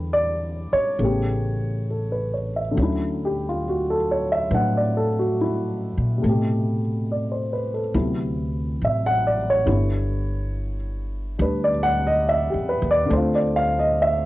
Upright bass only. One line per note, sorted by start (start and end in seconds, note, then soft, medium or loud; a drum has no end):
0.00 0.68 E2 medium
0.73 muted upright bass stroke soft
0.99 2.73 A1 medium
2.77 4.47 D2 medium
4.51 5.93 A2 medium
5.97 6.22 A#2 medium
6.24 7.91 A2 medium
7.94 8.77 D2 medium
8.82 9.63 A1 medium
9.67 11.34 G1 medium
11.39 12.50 D2 medium
12.54 12.80 E2 soft
12.82 13.09 D#2 medium
13.10 14.22 D2 medium